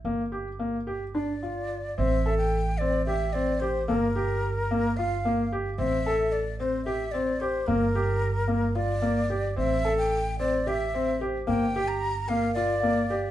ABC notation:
X:1
M:7/8
L:1/16
Q:1/4=110
K:Gdor
V:1 name="Celesta"
z12 z2 | e6 z2 g6 | z8 z2 f4- | f2 z12 |
z12 z2 | z12 c2- | c2 z4 B4 f4 |]
V:2 name="Flute"
z8 d6 | e3 g3 d2 e2 d2 c2 | B8 f4 z2 | e4 d2 c2 e2 d2 c2 |
B8 d6 | e3 g3 d2 e4 z2 | g3 b3 f2 d6 |]
V:3 name="Felt piano"
B,2 G2 B,2 G2 D2 F4 | C2 A4 C2 G2 C2 G2 | B,2 G4 B,2 F2 B,2 G2 | C2 A4 C2 G2 C2 G2 |
B,2 G4 B,2 F2 B,2 G2 | C2 A4 C2 G2 C2 G2 | B,2 G4 B,2 F2 B,2 G2 |]
V:4 name="Upright bass" clef=bass
G,,,12- G,,,2 | A,,,12- A,,,2 | G,,,12- G,,,2 | A,,,12- A,,,2 |
G,,,12- G,,,2 | A,,,12- A,,,2 | G,,,12- G,,,2 |]